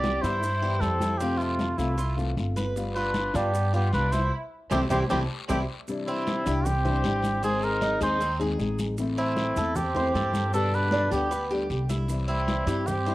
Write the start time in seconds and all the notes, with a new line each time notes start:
Already playing: C2 C3 E3 G3 B3 E4 G4 D5
0.04 high conga, short guiro, maracas
0.22 G2 E3 G3 B3 E4 C5, high conga, short guiro, maracas
0.42 muted nylon-string guitar stroke, high conga, long guiro, maracas
0.61 E3 G3 B3 E4 G4, high conga, maracas
0.80 F2 E3 G3 C4 E4 A4, high conga, short guiro, maracas
1.00 E4, high conga, short guiro, maracas
1.18 C3 A3 C4 G4, long guiro, maracas
1.22 F4
1.37 A3 F4, high conga, maracas
1.59 high conga, short guiro, maracas
1.77 C2 E3 A3 C4 E4 F4, high conga, short guiro, maracas
1.98 F4, muted nylon-string guitar stroke, high conga, long guiro, maracas
2.17 E3 A3 C4 F4, high conga, maracas
2.37 G1 A3 C4 F4, high conga, short guiro, maracas
2.56 B4, high conga, short guiro, maracas
2.76 G3 B3 F4, high conga, long guiro, maracas
2.95 D4 F4 B4, high conga, maracas
3.14 high conga, short guiro, maracas
3.34 G2 B3 D4 F4 G4, high conga, short guiro, maracas
3.54 muted nylon-string guitar stroke, high conga, long guiro, maracas
3.72 B3 F4 G4, high conga, maracas
3.93 C2 G3 B3 D4 F4 B4, high conga, short guiro, maracas
4.12 E4 C5, high conga, short guiro, maracas
4.71 C2 G3 A3 C4 E4 G4, low conga, long guiro, maracas
4.90 C2 G3 A3 C4 E4 G4, low conga, long guiro, maracas
5.09 C2 G3 A3 C4 E4 G4, low conga, long guiro, maracas
5.48 C2 G3 A3 C4 E4 G4, low conga, long guiro, maracas
5.88 C3 E3 G3 D4 E4, high conga, long guiro, maracas
6.07 G3 C4 E4, high conga, maracas
6.27 high conga, short guiro, maracas
6.45 C2 E3 G3 D4 E4 G4, high conga, short guiro, maracas
6.65 C4 G4, muted nylon-string guitar stroke, high conga, low conga, long guiro, maracas
6.84 E3 G3 D4 E4 C5, high conga, low conga, maracas
7.04 G#1 E3 G3 D4 E4 G4, high conga, short guiro, maracas
7.22 high conga, short guiro, maracas
7.43 D#3 G#3 C4 D#4 G#4, high conga, long guiro, maracas
7.62 D#4 A#4, high conga, maracas
7.81 D#4, high conga, short guiro, maracas
8.01 D#2 G#3 C4 D#4 G#4 C5, high conga, short guiro, maracas
8.20 C4, muted nylon-string guitar stroke, high conga, long guiro, maracas
8.39 G#3 C4 D#4 G#4, high conga, maracas
8.59 A1 G#3 C4 D#4 G#4, high conga, short guiro, maracas
8.79 high conga, short guiro, maracas
8.98 E3 A3 C4 E4, high conga, long guiro, maracas
9.17 A3 C4 E4, high conga, maracas
9.37 high conga, short guiro, maracas
9.56 E2 A3 C4 E4 A4, high conga, short guiro, maracas
9.76 C4 G4, muted nylon-string guitar stroke, high conga, low conga, long guiro, maracas
9.95 A3 C4 E4 C5, high conga, low conga, maracas
10.14 G2 E3 A3 C4 E4 A4, high conga, short guiro, maracas
10.34 high conga, short guiro, maracas
10.52 B2 D3 G3 B3 D4 G4 A4, high conga, long guiro, maracas
10.72 D4 B4, high conga, maracas
10.91 D4, high conga, short guiro, maracas
11.11 D2 D3 G3 B3 G4, high conga, short guiro, maracas
11.31 B3, muted nylon-string guitar stroke, high conga, long guiro, maracas
11.50 D3 G3 B3 G4, high conga, maracas
11.70 C2 D3 G3 B3 G4, high conga, short guiro, maracas
11.89 E4, high conga, short guiro, maracas
12.08 C3 E3 G3 C4 E4, high conga, long guiro, maracas
12.28 G3 C4 E4, high conga, maracas
12.48 high conga, short guiro, maracas
12.67 G2 E3 G3 C4 E4 G4, high conga, short guiro, maracas
12.86 C4 G4, muted nylon-string guitar stroke, high conga, low conga, long guiro, maracas
13.06 E3 G3 C4 E4 C5, high conga, maracas